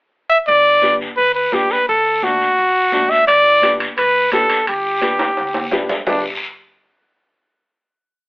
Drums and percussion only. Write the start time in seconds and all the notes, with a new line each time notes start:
0.47 high conga, long guiro
0.82 high conga, short guiro
1.01 short guiro
1.17 high conga, long guiro
1.52 high conga, short guiro
1.70 short guiro
1.87 high conga, long guiro
2.22 high conga, short guiro
2.41 short guiro
2.57 high conga, long guiro
2.92 high conga, short guiro
3.11 short guiro
3.28 high conga, high timbale, long guiro
3.62 high conga, high timbale, short guiro
3.80 high timbale, short guiro
3.97 high conga, high timbale, long guiro
4.32 high conga, high timbale, short guiro
4.50 high timbale, short guiro
4.66 high conga, high timbale, long guiro
5.02 high conga, high timbale, short guiro
5.19 high conga, high timbale, short guiro
5.37 high timbale, long guiro
5.54 high conga, high timbale
5.71 low conga, low timbale, short guiro
5.89 low conga, low timbale, short guiro
6.07 low conga, low timbale, long guiro